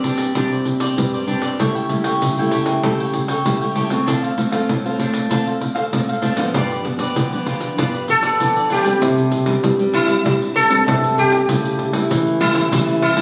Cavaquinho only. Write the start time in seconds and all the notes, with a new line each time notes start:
0.04 D4 G4 C5 D5
0.36 D4 G4 C5 D5
0.52 G4 C5 D5
0.67 muted cavaquinho stroke
0.81 G4 C5 D5
1.13 G4 C5 D5
1.27 D4 G4 C5 D5
1.42 G4 C5 D5
1.59 G4 A4 C#5 G5
1.75 A4 C#5 G5
1.90 muted cavaquinho stroke
2.04 A4 C#5 G5
2.39 A4 C#5 G5
2.52 G4 A4 C#5 G5
2.84 G4 A4 C#5 G5
3.01 A4 C#5 G5
3.15 muted cavaquinho stroke
3.29 A4 C#5 G5
3.62 A4 C#5 G5
3.75 G4 A4 C#5 G5
3.90 A4 C#5 G5
4.06 D4 A4 C5 F5
4.22 A4 C5 F5
4.38 muted cavaquinho stroke
4.51 A4 C5 F5
4.85 A4 C5 F5
5.00 D4 A4 C5 F5
5.30 D4 A4 C5 F5
5.47 A4 C5 F5
5.61 muted cavaquinho stroke
5.75 A4 C5 F5
6.09 A4 C5 F5
6.22 D4 A4 C5 F5
6.38 A4 C5 F5
6.56 F4 G4 B4 D5
6.72 G4 B4 D5
6.86 muted cavaquinho stroke
7.00 G4 B4 D5
7.33 G4 B4 D5
7.47 F4 G4 B4 D5
7.78 F4 G4 B4 D5
7.94 G4 B4 D5
8.09 muted cavaquinho stroke
8.23 G4 B4 D5
8.56 G4 B4 D5
8.70 F4 G4 B4 D5
8.84 G4 B4 D5